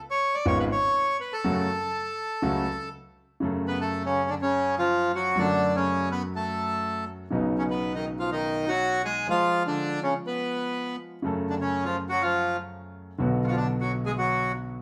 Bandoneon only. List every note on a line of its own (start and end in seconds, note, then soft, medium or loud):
0.11 0.36 C#5 medium
0.35 0.46 D5 medium
0.47 0.58 C#5 medium
0.59 0.65 B4 medium
0.72 1.17 C#5 medium
1.20 1.33 B4 medium
1.33 2.89 A4 medium
3.68 3.80 B3 medium
3.68 3.79 B4 medium
3.81 4.05 A3 medium
3.81 4.03 A4 medium
4.05 4.27 C#3 medium
4.05 4.30 C#4 medium
4.29 4.35 D3 medium
4.29 4.35 D4 medium
4.42 4.75 C#3 medium
4.42 4.75 C#4 medium
4.79 5.12 F3 medium
4.79 5.12 F4 medium
5.15 5.37 F#3 medium
5.15 5.39 F#4 medium
5.39 5.73 D3 medium
5.39 5.76 D4 medium
5.76 6.09 C#3 medium
5.76 6.09 C#4 medium
6.11 6.22 B3 medium
6.11 6.23 B4 medium
6.35 7.04 A3 medium
6.35 7.05 A4 medium
7.58 7.64 C#3 medium
7.58 7.63 C#4 medium
7.70 7.95 B3 medium
7.70 7.93 B4 medium
7.95 8.06 D#3 medium
7.95 8.05 D#4 medium
8.19 8.30 F3 medium
8.19 8.30 F4 medium
8.32 8.65 D#3 medium
8.32 8.69 D#4 medium
8.68 9.02 F#3 medium
8.68 9.02 F#4 medium
9.05 9.27 G#3 medium
9.05 9.27 G#4 medium
9.30 9.63 F3 medium
9.30 9.63 F4 medium
9.67 10.00 D3 medium
9.67 10.00 D4 medium
10.03 10.14 C#3 medium
10.03 10.14 C#4 medium
10.27 10.96 B3 medium
10.27 10.96 B4 medium
11.50 11.55 D3 soft
11.50 11.55 D4 medium
11.61 11.85 C#3 medium
11.61 11.84 C#4 medium
11.85 11.97 F3 medium
11.85 11.96 F4 medium
12.09 12.22 F#3 medium
12.09 12.22 F#4 medium
12.22 12.57 F3 medium
12.22 12.56 F4 medium
13.47 13.56 F3 medium
13.47 13.56 F4 medium
13.47 13.51 F#4 medium
13.56 13.68 D3 medium
13.56 13.67 D4 medium
13.81 13.92 F#3 medium
13.81 13.92 F#4 medium
14.06 14.12 G#3 medium
14.06 14.11 G#4 medium
14.18 14.52 F#3 medium
14.18 14.52 F#4 medium